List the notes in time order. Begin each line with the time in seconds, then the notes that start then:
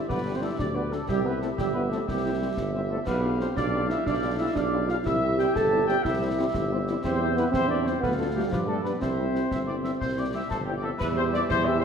0.08 G1 B3 G4 B4 D5, concert bass drum, snare
0.26 G3 D4
0.34 C4 C5
0.41 G3 D4 E4 E5
0.58 D2 D4 G4 D5, concert bass drum, snare
0.74 G3 B3 D4 B4
0.91 G3 A3 D4 A4, snare
1.08 C2 G3 G4 E5, concert bass drum, snare
1.24 G3 B3 C4 E4 B4
1.40 G3 A3 C4 E4 A4, snare
1.57 G1 G3 G4 E5, concert bass drum, snare
1.73 G3 B3 C4 E4 B4
1.90 G3 A3 C4 E4 A4, snare
2.06 C2 G3 G4 E5, concert bass drum, snare
2.23 G3 C4 E4
2.40 G3 C4 E4
2.57 G1, concert bass drum, snare
2.73 G3 C4 E4
2.90 G3 A3 C4 E4 A4
3.06 B1 B3 G4 B4 F5, concert bass drum, snare, crash
3.23 G3 D4 F4
3.39 G3 C4 D4 F4 C5, snare
3.56 B1 D4 G4 D5 F5, concert bass drum, snare
3.74 G3 D4 F4
3.89 G3 D4 E4 F4 E5, snare
4.05 B1 D4 G4 D5 F5, concert bass drum, snare
4.23 G3 D4 F4
4.38 G3 D4 E4 F4 E5
4.54 B1 D4 G4 D5 F5, concert bass drum, snare
4.72 G3 D4 F4
4.87 G3 D4 F4 F5, snare
5.04 C2 E4 G4 E5, concert bass drum, snare
5.23 G3 C4 E4
5.37 G3 C4 E4 G4 G5, snare
5.54 G1 A4 A5, concert bass drum, snare
5.72 G3 C4 E4
5.87 G3 C4 E4 G4 G5, snare
6.03 C2 E4 G4 E5, concert bass drum, snare
6.21 G3 C4 E4
6.38 G3 C4 E4
6.54 G1, concert bass drum, snare
6.71 G3 C4 E4
6.87 G3 C4 E4, snare
7.03 E2 C4 G4 C5 E5, concert bass drum, snare, crash
7.20 G3 C4 E4
7.36 G3 B3 C4 E4 B4, snare
7.51 E2 C4 G4 C5 E5, concert bass drum, snare
7.68 G3 C4 D4 E4 D5
7.84 G3 C4 E4 C5, snare
8.00 D2 B3 A4 B4 F5, concert bass drum, snare
8.17 A3 D4 F4 A4
8.34 G3 A3 D4 F4 G4
8.50 G2 F3 F4 B4 D5, concert bass drum, snare
8.67 G3 A3 B3 D4 A4
8.82 G3 B3 D4 B4, snare
9.00 C2 C4 C5 E5, concert bass drum, snare
9.17 G3 C4 E4
9.34 G3 C4 E4, snare
9.51 G1 E5, concert bass drum, snare
9.67 G3 C4 E4 D5
9.83 G3 C4 E4 E5, snare
10.01 C2 C5, concert bass drum, snare
10.17 G3 C4 E4 D5
10.32 G3 C4 E4 G4 E5
10.50 G1 A4 C5, concert bass drum, snare
10.65 G3 C4 E4 G4
10.77 D5
10.82 G3 C4 E4 A4 E5
10.99 E2 E3 G3 G4 B4 E5, concert bass drum, snare, crash
11.16 G3 C4 E4 C5
11.32 G3 C4 E4 D5, snare
11.49 E2 E4 G4 C5 E5, concert bass drum, snare
11.65 G3 C4 E4 E5
11.80 C5